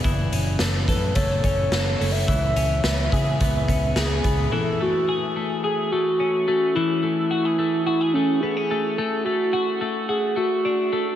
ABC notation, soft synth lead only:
X:1
M:4/4
L:1/16
Q:1/4=108
K:A
V:1 name="Soft synth lead"
z6 B2 c2 c4 c e- | e6 e6 G4 | A2 F4 z2 G2 F4 F2 | E4 E4 E2 C2 G4 |
A2 F4 z2 G2 F6 |]